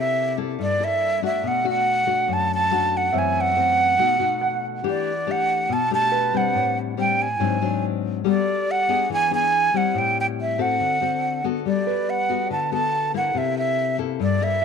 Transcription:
Already playing: C3 A#3 E4 A4 D5
0.00 E5
0.37 A#3 E4 A4
0.59 G2 D5
0.80 A#3 E4 A4
0.84 E5
1.22 A3 D4 F#4 E5
1.43 B2
1.48 F#5
1.64 A3 D4 F#4
1.69 F#5
2.07 A3 D4 F#4
2.28 F#2
2.33 A5
2.54 A5
2.71 A3 D4 F#4
2.97 F#5
3.13 F#2 E3 A3 C4 E5
3.18 G#5
3.41 F#5
3.56 E3 A3 C4
3.98 B2 A3 D#4 F#4
4.19 A3 D#4 F#4
4.41 F#5
4.83 E3 A3 D4 G4
4.89 D5
5.27 A3 D4 G4
5.31 F#5
5.69 B2 A5
5.91 A3 D4 G4 A5
6.12 B4
6.33 G3 C4 D4 F#5
6.55 A2
6.97 G3 C4 D4 G5
7.22 G#5
7.40 G#2 F#3 C4 D4
7.61 F#3 C4 D4
8.24 G3 B3 F#4 A4 D5
8.71 F#5
8.88 B3 D4 G#4
9.10 E3 G#5
9.31 B3 D4 G#4 G#5
9.74 G3 C4 E4 F#5
9.94 A2
9.98 G5
10.20 G5
10.41 E5
10.58 C4 F#4 A4 F#5
10.80 D3
11.01 C4 F#4 A4
11.44 B3 F#4 A4
11.65 G3 D5
11.87 B4
12.10 F#5
12.29 B3 F#4 A4
12.50 D3 A5
12.72 B3 F#4 A4 A5
13.14 A#3 E4 A4 F#5
13.35 C3 E5
13.58 E5
13.98 A#3 E4 A4
14.20 G2 D5
14.41 A#3 E4 A4 E5

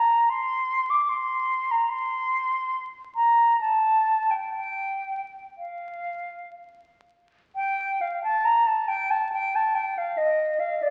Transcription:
Already playing: A#5
0.30 C6
0.90 D6
1.09 C6
1.71 A#5
1.90 C6
3.16 A#5
3.61 A5
4.31 G5
4.55 G5
5.58 F5
7.56 G5
8.01 F5
8.24 A5
8.45 A#5
8.67 A5
8.88 G5
9.11 A5
9.32 G5
9.55 A5
9.75 G5
9.98 F5
10.17 D#5
10.60 F5
10.82 D5

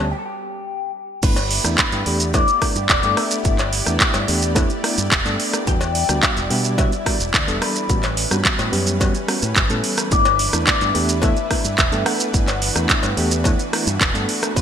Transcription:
Already playing: D2 A4
0.11 G4
0.19 A4
0.26 G4
1.23 G1 A3 B3 D4 E4 G4 B4 D5, kick, closed hi-hat, crash, shaker
1.36 closed hi-hat, cowbell, shaker
1.51 open hi-hat
1.64 E2 A3 B3 D4 E4, cross-stick, closed hi-hat, shaker
1.78 B4, kick, clap, closed hi-hat, shaker
1.92 G2, closed hi-hat, shaker
2.06 E2 A3 B3 D4 G4, open hi-hat
2.20 closed hi-hat, shaker
2.34 A3 B3 D4 E4 D5, kick, closed hi-hat, cowbell, shaker
2.48 closed hi-hat, shaker
2.62 A3 B3 D4 E4, kick, cross-stick, open hi-hat
2.76 G2, closed hi-hat, shaker
2.89 E1 D5, kick, clap, closed hi-hat, shaker
3.03 G2 A3 B3 D4 A4, closed hi-hat, shaker
3.17 E5, cross-stick, open hi-hat
3.31 closed hi-hat, shaker
3.45 G1 A3 B3 D4 E4, kick, closed hi-hat, shaker
3.59 clap, closed hi-hat, cowbell, shaker
3.73 open hi-hat
3.86 E2 A3 B3 D4 E4, cross-stick, closed hi-hat, shaker
4.00 kick, clap, closed hi-hat, shaker
4.14 G2, closed hi-hat, cowbell, shaker
4.28 E2 A3 B3 D4 G4, open hi-hat
4.42 closed hi-hat, shaker
4.55 A3 B3 D4 E4, kick, closed hi-hat, cowbell, shaker
4.70 closed hi-hat, shaker
4.83 A3 B3 D4 E4, cross-stick, open hi-hat
4.98 G2, closed hi-hat, shaker
5.12 E1, kick, clap, closed hi-hat, shaker
5.25 G2 A3 B3 D4 A4, closed hi-hat, shaker
5.40 open hi-hat
5.53 cross-stick, shaker
5.67 E2 E3 G3 B3 D4 E4 F#4 G5, kick, closed hi-hat, shaker
5.81 closed hi-hat, cowbell, shaker
5.95 open hi-hat
6.09 D2 G3 B3 D4 F#4, cross-stick, closed hi-hat, shaker
6.23 F#5, kick, clap, closed hi-hat, shaker
6.37 E1, closed hi-hat, shaker
6.50 B2 G3 B3 D4 G4, open hi-hat
6.65 shaker
6.78 G3 B3 D4 F#4 E5, kick, closed hi-hat, cowbell, shaker
6.92 closed hi-hat, shaker
7.06 G3 B3 D4 F#4 D5, kick, cross-stick, open hi-hat
7.20 E1, shaker
7.34 D2, kick, clap, closed hi-hat, shaker
7.47 E1 G3 B3 D4 A4, closed hi-hat, shaker
7.62 B4, cross-stick, open hi-hat
7.76 shaker
7.89 A1 G3 B3 C#4 F#4 B4, kick, closed hi-hat, shaker
8.03 clap, closed hi-hat, cowbell, shaker
8.17 open hi-hat
8.31 G2 G3 B3 C#4 F#4, cross-stick, shaker
8.45 kick, clap, closed hi-hat, shaker
8.59 A2, closed hi-hat, cowbell, shaker
8.72 F#2 G3 B3 C#4 G4, open hi-hat
8.87 closed hi-hat, shaker
9.00 G3 B3 C#4 F#4, kick, closed hi-hat, cowbell, shaker
9.15 closed hi-hat, shaker
9.28 G3 B3 C#4 F#4, cross-stick, open hi-hat
9.42 A2, closed hi-hat, shaker
9.56 G1, kick, clap, closed hi-hat, shaker
9.69 A2 G3 B3 C#4 A4, closed hi-hat, shaker
9.84 open hi-hat
9.98 cross-stick, closed hi-hat, shaker
10.11 G1 A3 B3 D4 E4 D5, kick, closed hi-hat, shaker
10.25 closed hi-hat, cowbell, shaker
10.39 open hi-hat
10.53 E2 A3 B3 D4 E4, cross-stick, closed hi-hat, shaker
10.67 D5, kick, clap, closed hi-hat, shaker
10.81 G2, closed hi-hat, shaker
10.95 E2 A3 B3 D4 G4, open hi-hat
11.09 closed hi-hat, shaker
11.22 A3 B3 D4 E4 E5, kick, closed hi-hat, cowbell, shaker
11.37 closed hi-hat, shaker
11.50 A3 B3 D4 E4, kick, cross-stick, open hi-hat
11.65 G2, closed hi-hat, shaker
11.78 E1 E5, kick, clap, closed hi-hat, shaker
11.92 G2 A3 B3 D4 A4, closed hi-hat, shaker
12.06 F#5, cross-stick, open hi-hat
12.20 closed hi-hat, shaker
12.34 G1 A3 B3 D4 E4 F#4, kick, closed hi-hat, shaker
12.48 clap, closed hi-hat, cowbell, shaker
12.62 open hi-hat
12.76 E2 A3 B3 D4 E4, cross-stick, shaker
12.89 kick, clap, closed hi-hat, shaker
13.03 G2, closed hi-hat, cowbell, shaker
13.17 E2 A3 B3 D4 G4, open hi-hat
13.31 closed hi-hat, shaker
13.44 A3 B3 D4 E4, kick, closed hi-hat, cowbell, shaker
13.59 closed hi-hat, shaker
13.72 A3 B3 D4 E4, cross-stick, open hi-hat
13.87 G2, closed hi-hat, shaker
14.01 E1, kick, clap, closed hi-hat, shaker
14.14 G2 A3 B3 D4 A4, closed hi-hat, shaker
14.29 open hi-hat
14.43 cross-stick, closed hi-hat, shaker
14.56 E2 G3 B3 D4 E4 F#4 B4 D5, kick, closed hi-hat, shaker

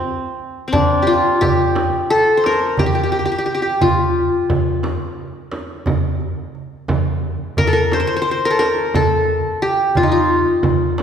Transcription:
Already playing: C4 F4
0.68 C4
0.73 D4, frame drum, darbuka dum
1.02 G4
1.07 F4
1.41 G4, darbuka dum, frame drum
1.75 darbuka tek, frame drum
2.10 A4
2.37 C5
2.44 A#4, darbuka tek, frame drum
2.77 G4, darbuka dum, frame drum
2.86 G4
2.95 G4
3.03 G4
3.12 G4, darbuka ka
3.19 G4
3.26 G4
3.32 G4
3.38 G4
3.46 G4, darbuka ka
3.55 G4
3.62 G4
3.81 F4, darbuka dum, frame drum
4.50 frame drum, darbuka dum
4.83 darbuka tek, frame drum
5.52 darbuka tek, frame drum
5.86 darbuka dum, frame drum
6.20 darbuka ka
6.55 darbuka ka
6.88 darbuka dum, frame drum
7.57 A#4, darbuka dum, frame drum
7.67 A4
7.73 A#4
7.92 C5, darbuka tek, frame drum
8.00 C5
8.07 C5
8.16 C5
8.22 C5
8.31 C5
8.45 A#4
8.50 A4
8.59 A#4, darbuka tek, frame drum
8.94 A4, darbuka dum, frame drum
9.28 darbuka ka
9.62 G4, darbuka ka
9.95 F4, darbuka dum, frame drum
10.03 D#4
10.12 F4
10.30 darbuka ka
10.63 frame drum, darbuka dum
10.81 darbuka ka
10.98 darbuka tek, frame drum

